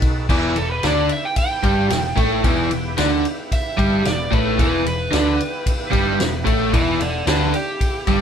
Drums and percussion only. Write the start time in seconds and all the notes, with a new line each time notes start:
0.02 kick, ride
0.29 kick, crash
0.56 ride
0.83 snare, ride
1.09 ride
1.36 kick, ride
1.63 kick, ride
1.90 snare, ride
2.17 kick, ride
2.44 kick, ride
2.71 ride
2.98 snare, ride
3.25 ride
3.52 kick, ride
3.78 kick, ride
4.05 snare, ride
4.32 kick, ride
4.59 kick, ride
4.86 ride
5.13 snare, ride
5.40 ride
5.66 kick, ride
5.93 kick, ride
6.20 snare, ride
6.47 kick, ride
6.73 kick, ride
7.01 ride
7.27 snare, ride
7.54 ride
7.81 kick, ride
8.07 kick, ride